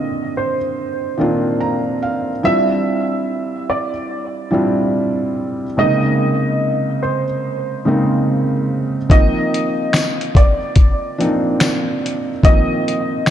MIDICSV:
0, 0, Header, 1, 4, 480
1, 0, Start_track
1, 0, Tempo, 833333
1, 1401, Time_signature, 4, 2, 24, 8
1, 7662, End_track
2, 0, Start_track
2, 0, Title_t, "Upright piano"
2, 0, Program_c, 0, 0
2, 0, Note_on_c, 0, 75, 90
2, 183, Note_off_c, 0, 75, 0
2, 214, Note_on_c, 0, 72, 67
2, 1384, Note_off_c, 0, 72, 0
2, 1411, Note_on_c, 0, 76, 100
2, 2103, Note_off_c, 0, 76, 0
2, 2129, Note_on_c, 0, 74, 69
2, 3302, Note_off_c, 0, 74, 0
2, 3333, Note_on_c, 0, 75, 91
2, 4024, Note_off_c, 0, 75, 0
2, 4046, Note_on_c, 0, 72, 67
2, 5221, Note_off_c, 0, 72, 0
2, 5249, Note_on_c, 0, 75, 90
2, 5942, Note_off_c, 0, 75, 0
2, 5970, Note_on_c, 0, 74, 71
2, 7142, Note_off_c, 0, 74, 0
2, 7169, Note_on_c, 0, 75, 89
2, 7662, Note_off_c, 0, 75, 0
2, 7662, End_track
3, 0, Start_track
3, 0, Title_t, "Felt piano"
3, 0, Program_c, 1, 0
3, 0, Control_c, 1, 64, 127
3, 0, Note_on_c, 1, 50, 63
3, 0, Note_on_c, 1, 51, 66
3, 0, Note_on_c, 1, 58, 66
3, 0, Note_on_c, 1, 60, 63
3, 0, Note_on_c, 1, 65, 80
3, 319, Note_off_c, 1, 51, 0
3, 321, Note_off_c, 1, 58, 0
3, 324, Note_off_c, 1, 60, 0
3, 326, Note_off_c, 1, 50, 0
3, 329, Note_off_c, 1, 65, 0
3, 677, Note_on_c, 1, 51, 72
3, 683, Note_on_c, 1, 58, 64
3, 687, Note_on_c, 1, 60, 60
3, 693, Note_on_c, 1, 62, 64
3, 698, Note_on_c, 1, 65, 82
3, 925, Note_on_c, 1, 82, 71
3, 1146, Note_off_c, 1, 82, 0
3, 1167, Note_on_c, 1, 77, 73
3, 1321, Note_off_c, 1, 51, 0
3, 1324, Note_off_c, 1, 58, 0
3, 1326, Note_off_c, 1, 60, 0
3, 1329, Note_off_c, 1, 62, 0
3, 1331, Note_off_c, 1, 65, 0
3, 1387, Note_off_c, 1, 77, 0
3, 1401, Note_on_c, 1, 64, 68
3, 1404, Note_on_c, 1, 55, 59
3, 1408, Control_c, 1, 64, 0
3, 1410, Note_on_c, 1, 60, 63
3, 1413, Note_on_c, 1, 62, 58
3, 1419, Note_on_c, 1, 65, 73
3, 1521, Control_c, 1, 64, 127
3, 2243, Note_off_c, 1, 64, 0
3, 2245, Note_off_c, 1, 55, 0
3, 2248, Note_off_c, 1, 60, 0
3, 2249, Note_off_c, 1, 62, 0
3, 2252, Note_off_c, 1, 65, 0
3, 2596, Note_on_c, 1, 64, 68
3, 2601, Note_on_c, 1, 55, 67
3, 2606, Note_on_c, 1, 60, 65
3, 2612, Note_on_c, 1, 62, 64
3, 2614, Note_on_c, 1, 65, 79
3, 3240, Note_off_c, 1, 64, 0
3, 3243, Note_off_c, 1, 55, 0
3, 3245, Note_off_c, 1, 60, 0
3, 3248, Note_off_c, 1, 62, 0
3, 3250, Note_off_c, 1, 65, 0
3, 3323, Note_on_c, 1, 48, 52
3, 3328, Control_c, 1, 64, 0
3, 3328, Note_on_c, 1, 56, 68
3, 3333, Note_on_c, 1, 58, 67
3, 3337, Note_on_c, 1, 60, 63
3, 3341, Note_on_c, 1, 63, 81
3, 3362, Note_on_c, 1, 49, 67
3, 3370, Note_off_c, 1, 48, 0
3, 3445, Control_c, 1, 64, 127
3, 4167, Note_off_c, 1, 56, 0
3, 4169, Note_off_c, 1, 58, 0
3, 4171, Note_off_c, 1, 60, 0
3, 4173, Note_off_c, 1, 63, 0
3, 4184, Note_off_c, 1, 49, 0
3, 4522, Note_on_c, 1, 49, 71
3, 4525, Note_on_c, 1, 56, 59
3, 4531, Note_on_c, 1, 58, 63
3, 4534, Note_on_c, 1, 60, 66
3, 4539, Note_on_c, 1, 63, 79
3, 5164, Note_off_c, 1, 49, 0
3, 5165, Note_off_c, 1, 56, 0
3, 5168, Note_off_c, 1, 58, 0
3, 5169, Note_off_c, 1, 60, 0
3, 5172, Note_off_c, 1, 63, 0
3, 5237, Note_on_c, 1, 51, 64
3, 5242, Note_on_c, 1, 53, 63
3, 5247, Control_c, 1, 64, 0
3, 5247, Note_on_c, 1, 58, 61
3, 5251, Note_on_c, 1, 60, 64
3, 5256, Note_on_c, 1, 63, 78
3, 5360, Control_c, 1, 64, 127
3, 6081, Note_off_c, 1, 51, 0
3, 6084, Note_off_c, 1, 53, 0
3, 6086, Note_off_c, 1, 58, 0
3, 6088, Note_off_c, 1, 60, 0
3, 6091, Note_off_c, 1, 63, 0
3, 6442, Note_on_c, 1, 62, 72
3, 6445, Note_on_c, 1, 53, 65
3, 6449, Note_on_c, 1, 58, 56
3, 6454, Note_on_c, 1, 60, 69
3, 6458, Note_on_c, 1, 63, 77
3, 7083, Note_off_c, 1, 62, 0
3, 7085, Note_off_c, 1, 53, 0
3, 7087, Note_off_c, 1, 58, 0
3, 7090, Note_off_c, 1, 60, 0
3, 7091, Note_off_c, 1, 63, 0
3, 7163, Note_on_c, 1, 51, 69
3, 7166, Note_on_c, 1, 53, 64
3, 7171, Note_on_c, 1, 58, 57
3, 7175, Note_on_c, 1, 60, 62
3, 7180, Note_on_c, 1, 63, 72
3, 7662, Note_off_c, 1, 51, 0
3, 7662, Note_off_c, 1, 53, 0
3, 7662, Note_off_c, 1, 58, 0
3, 7662, Note_off_c, 1, 60, 0
3, 7662, Note_off_c, 1, 63, 0
3, 7662, End_track
4, 0, Start_track
4, 0, Title_t, "Drums"
4, 5241, Note_on_c, 9, 36, 100
4, 5248, Note_on_c, 9, 42, 69
4, 5298, Note_off_c, 9, 36, 0
4, 5305, Note_off_c, 9, 42, 0
4, 5497, Note_on_c, 9, 42, 62
4, 5555, Note_off_c, 9, 42, 0
4, 5721, Note_on_c, 9, 26, 84
4, 5724, Note_on_c, 9, 38, 108
4, 5727, Note_on_c, 9, 54, 66
4, 5739, Note_on_c, 9, 42, 85
4, 5778, Note_off_c, 9, 26, 0
4, 5782, Note_off_c, 9, 38, 0
4, 5785, Note_off_c, 9, 54, 0
4, 5796, Note_off_c, 9, 42, 0
4, 5882, Note_on_c, 9, 42, 49
4, 5939, Note_off_c, 9, 42, 0
4, 5961, Note_on_c, 9, 36, 89
4, 5970, Note_on_c, 9, 42, 61
4, 6019, Note_off_c, 9, 36, 0
4, 6028, Note_off_c, 9, 42, 0
4, 6195, Note_on_c, 9, 42, 70
4, 6198, Note_on_c, 9, 36, 82
4, 6253, Note_off_c, 9, 42, 0
4, 6256, Note_off_c, 9, 36, 0
4, 6454, Note_on_c, 9, 42, 57
4, 6512, Note_off_c, 9, 42, 0
4, 6683, Note_on_c, 9, 26, 86
4, 6683, Note_on_c, 9, 54, 75
4, 6687, Note_on_c, 9, 38, 105
4, 6688, Note_on_c, 9, 42, 83
4, 6741, Note_off_c, 9, 26, 0
4, 6741, Note_off_c, 9, 54, 0
4, 6744, Note_off_c, 9, 38, 0
4, 6746, Note_off_c, 9, 42, 0
4, 6946, Note_on_c, 9, 42, 68
4, 7004, Note_off_c, 9, 42, 0
4, 7162, Note_on_c, 9, 36, 108
4, 7169, Note_on_c, 9, 42, 78
4, 7220, Note_off_c, 9, 36, 0
4, 7227, Note_off_c, 9, 42, 0
4, 7419, Note_on_c, 9, 42, 62
4, 7477, Note_off_c, 9, 42, 0
4, 7640, Note_on_c, 9, 26, 86
4, 7643, Note_on_c, 9, 38, 106
4, 7662, Note_off_c, 9, 26, 0
4, 7662, Note_off_c, 9, 38, 0
4, 7662, End_track
0, 0, End_of_file